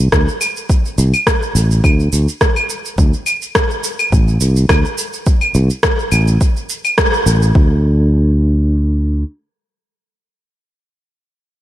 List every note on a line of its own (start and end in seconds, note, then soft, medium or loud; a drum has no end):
0.12 0.25 D2 medium
0.12 kick medium
0.12 cross-stick medium
0.12 shaker soft
0.28 shaker soft
0.41 claves medium
0.41 shaker medium
0.57 shaker soft
0.70 kick loud
0.70 shaker soft
0.85 shaker soft
0.98 1.11 C2 medium
0.98 shaker medium
1.14 claves medium
1.14 shaker soft
1.27 kick medium
1.27 cross-stick medium
1.27 shaker soft
1.42 shaker soft
1.55 1.80 A1 medium
1.55 shaker medium
1.71 shaker soft
1.84 2.08 D2 medium
1.84 kick medium
1.84 claves medium
1.84 shaker soft
2.00 shaker soft
2.13 2.26 D2 medium
2.13 shaker medium
2.28 shaker soft
2.41 kick medium
2.41 cross-stick medium
2.41 shaker soft
2.56 claves medium
2.56 shaker soft
2.69 shaker medium
2.85 shaker soft
2.98 3.11 D2 loud
2.98 kick loud
2.98 shaker soft
3.13 shaker soft
3.26 claves medium
3.26 shaker medium
3.42 shaker soft
3.55 kick medium
3.55 cross-stick loud
3.55 shaker soft
3.71 shaker soft
3.84 shaker medium
3.99 claves medium
3.99 shaker soft
4.12 4.37 A1 medium
4.12 kick loud
4.12 shaker soft
4.28 shaker soft
4.41 4.66 C2 medium
4.41 shaker medium
4.56 shaker soft
4.69 4.83 D2 medium
4.69 kick medium
4.69 cross-stick medium
4.69 claves medium
4.69 shaker soft
4.85 shaker soft
4.98 shaker medium
5.13 shaker soft
5.26 kick loud
5.26 shaker soft
5.41 claves medium
5.41 shaker soft
5.54 5.68 C2 medium
5.54 shaker medium
5.70 shaker soft
5.83 kick medium
5.83 cross-stick loud
5.83 shaker soft
5.99 shaker soft
6.12 6.37 A1 medium
6.12 claves medium
6.12 shaker medium
6.28 shaker soft
6.41 kick medium
6.41 shaker soft
6.57 shaker soft
6.69 shaker medium
6.85 claves medium
6.85 shaker soft
6.98 kick medium
6.98 cross-stick medium
6.98 shaker soft
7.14 shaker soft
7.26 7.51 A1 medium
7.26 shaker medium
7.42 shaker soft
7.55 9.23 D2 medium
7.55 kick loud